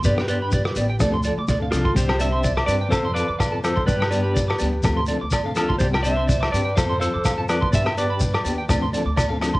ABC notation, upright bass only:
X:1
M:4/4
L:1/16
Q:"Swing 16ths" 1/4=125
K:C
V:1 name="Upright bass" clef=bass
G,,6 A,,,2 D,,3 D,, D,,2 C,,2 | C,,6 G,,2 F,,3 F,,4- F,, | G,,6 D,,2 D,,3 D,,4- D,, | C,,6 G,,2 F,,3 F,,4- F,, |
G,,6 _E,,2 D,,3 D,,4- D,, |]